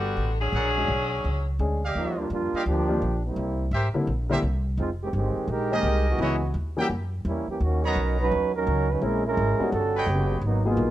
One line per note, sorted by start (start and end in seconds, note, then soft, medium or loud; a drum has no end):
0.00 0.16 G1 medium
0.00 0.36 D3 medium
0.00 0.36 G3 medium
0.00 0.36 B3 medium
0.00 0.36 F#4 medium
0.17 0.51 A1 medium
0.40 1.55 F#3 medium
0.40 1.55 C#4 medium
0.40 1.55 D4 medium
0.40 1.55 G#4 loud
0.52 0.87 A#1 medium
0.52 0.68 G#4 medium
0.52 0.68 A#4 medium
0.52 0.68 D5 medium
0.52 0.68 F#5 medium
0.77 0.88 G#3 medium
0.77 0.88 C#4 medium
0.77 0.88 D4 medium
0.77 0.88 F#4 medium
0.88 1.23 B1 medium
1.24 1.58 C#2 medium
1.59 1.94 D2 medium
1.59 1.80 G#3 medium
1.59 1.80 C#4 medium
1.59 1.80 D4 soft
1.59 1.80 G#4 medium
1.83 2.28 G4 medium
1.83 2.28 D5 medium
1.83 2.28 D#5 medium
1.83 2.28 F5 medium
1.95 2.29 D#2 medium
1.95 2.16 F3 medium
1.95 2.16 G3 medium
1.95 2.15 A#3 medium
1.95 2.16 D#4 medium
2.17 2.30 G3 medium
2.17 2.30 A#3 medium
2.17 2.30 D4 medium
2.17 2.30 F4 medium
2.30 2.51 F2 medium
2.30 2.64 G3 medium
2.30 2.63 A#3 medium
2.30 2.63 D4 medium
2.30 2.63 F4 medium
2.53 2.62 G4 medium
2.53 2.61 D5 medium
2.53 2.62 D#5 medium
2.53 2.62 F5 medium
2.53 muted upright bass stroke soft
2.66 3.00 D2 medium
2.66 3.20 F3 medium
2.66 3.20 A#3 medium
2.66 3.20 D4 medium
2.66 3.20 G4 loud
2.88 3.00 D#3 medium
2.88 3.00 G3 medium
2.88 3.00 A#3 medium
2.88 3.00 D4 soft
2.88 3.00 F4 medium
3.02 3.36 A#1 medium
3.26 3.70 G3 medium
3.26 3.70 A#3 medium
3.26 3.70 C4 medium
3.26 3.70 E4 medium
3.36 3.71 C2 medium
3.71 3.93 G#1 medium
3.71 3.87 G4 medium
3.71 3.87 A#4 medium
3.71 3.87 C5 medium
3.71 3.87 E5 medium
3.94 4.06 D3 medium
3.94 4.06 G3 medium
3.94 4.06 A#3 medium
3.94 4.06 C4 medium
3.94 4.06 E4 medium
3.94 muted upright bass stroke soft
4.07 4.41 A#1 medium
4.29 4.41 D3 medium
4.29 4.41 G3 medium
4.29 4.41 A#3 medium
4.29 4.42 C4 medium
4.29 4.41 E4 medium
4.29 4.38 G4 medium
4.29 4.38 A#4 medium
4.29 4.38 C5 medium
4.29 4.38 E5 medium
4.42 4.77 C2 medium
4.77 5.12 F1 medium
4.77 4.89 G#3 medium
4.77 4.89 C4 medium
4.77 4.89 D#4 medium
4.77 4.89 F4 medium
5.02 5.08 D#3 medium
5.02 5.08 G#3 medium
5.02 5.08 C4 medium
5.02 5.08 G4 medium
5.13 5.34 G1 medium
5.13 5.48 D#3 medium
5.13 5.47 G#3 medium
5.13 5.47 C4 medium
5.13 5.47 G4 medium
5.36 muted upright bass stroke soft
5.48 5.82 A#1 medium
5.48 6.07 G#3 medium
5.48 6.07 D#4 medium
5.48 6.07 G4 medium
5.48 6.07 A#4 loud
5.71 5.83 D#3 medium
5.71 5.83 G#3 medium
5.71 5.83 A#3 soft
5.71 5.83 C4 medium
5.71 6.17 G4 medium
5.71 5.83 G4 medium
5.71 6.17 G#4 medium
5.71 6.17 A#4 medium
5.71 6.17 D#5 loud
5.83 6.18 C2 medium
6.09 6.53 E3 medium
6.09 6.53 B3 medium
6.09 6.53 D#4 medium
6.09 6.53 F#4 medium
6.18 6.53 C#2 medium
6.18 6.40 E3 medium
6.18 6.40 G#3 medium
6.18 6.40 B3 medium
6.18 6.40 C#4 medium
6.18 6.40 D#4 medium
6.18 6.35 E4 medium
6.18 6.35 B4 medium
6.18 6.34 C#5 medium
6.18 6.35 D#5 medium
6.54 6.89 D#2 medium
6.77 6.89 E3 medium
6.77 6.89 G3 medium
6.77 6.89 A#3 medium
6.77 6.89 C#4 medium
6.77 6.89 F#4 medium
6.77 6.86 G4 medium
6.77 6.86 A#4 medium
6.77 6.86 E5 medium
6.77 6.86 G5 medium
6.89 7.24 F#2 medium
7.25 7.46 E2 medium
7.25 7.47 G3 medium
7.25 7.47 A#3 medium
7.25 7.47 C#4 medium
7.25 7.47 E4 medium
7.48 7.61 E3 medium
7.48 7.61 A#3 medium
7.48 7.61 C#4 medium
7.48 7.61 G4 medium
7.48 muted upright bass stroke soft
7.60 7.95 D#2 medium
7.60 7.84 D#3 medium
7.60 7.84 A#3 medium
7.60 7.83 C#4 medium
7.60 7.84 F#4 medium
7.83 8.18 F#3 medium
7.83 8.29 B3 medium
7.83 8.18 C#4 medium
7.83 8.19 D#4 medium
7.83 8.19 A#4 loud
7.83 8.29 C#5 medium
7.83 8.29 D#5 medium
7.83 8.29 A#5 medium
7.96 8.30 B1 medium
8.19 8.52 F#3 medium
8.19 8.52 C#4 medium
8.19 8.52 D#4 medium
8.19 8.52 B4 loud
8.32 8.66 D#2 medium
8.55 8.89 F#3 medium
8.55 8.89 C#4 medium
8.55 8.90 D#4 medium
8.55 8.90 A#4 loud
8.67 9.01 C#2 medium
8.90 9.03 F#3 medium
8.90 9.01 C#4 medium
8.90 9.03 D#4 medium
8.90 9.03 B4 loud
9.02 9.36 A#1 medium
9.02 9.22 G#3 medium
9.02 9.24 G#3 medium
9.02 9.22 A#3 soft
9.02 9.22 C4 soft
9.02 9.22 C#4 medium
9.02 9.25 C#4 medium
9.02 9.24 E4 medium
9.02 9.23 E4 medium
9.02 9.24 A#4 loud
9.25 9.70 G#3 medium
9.25 9.70 C#4 medium
9.25 9.70 E4 medium
9.25 9.70 A#4 loud
9.37 9.58 G#1 medium
9.59 9.71 G3 medium
9.59 9.71 B3 medium
9.59 9.71 C#4 medium
9.59 9.71 D#4 medium
9.59 9.72 F#4 medium
9.59 muted upright bass stroke soft
9.72 10.06 G1 medium
9.72 10.06 G3 medium
9.72 10.06 C#4 medium
9.72 10.06 F#4 medium
9.72 10.06 A4 loud
9.95 10.41 B4 medium
9.95 10.41 C#5 medium
9.95 10.41 D#5 medium
9.95 10.41 G5 medium
10.07 10.41 F#1 medium
10.07 10.37 C#3 medium
10.07 10.37 F#3 medium
10.07 10.37 B3 medium
10.07 10.37 G4 loud
10.41 10.76 G#1 medium
10.41 10.65 F#3 medium
10.41 10.65 A#3 medium
10.41 10.64 B3 medium
10.41 10.65 D#4 medium
10.65 10.91 F#3 medium
10.65 10.91 A#3 medium
10.65 10.91 B3 medium
10.65 10.91 D#4 medium
10.65 10.91 F4 loud
10.65 10.91 G#4 medium
10.77 10.91 A#1 medium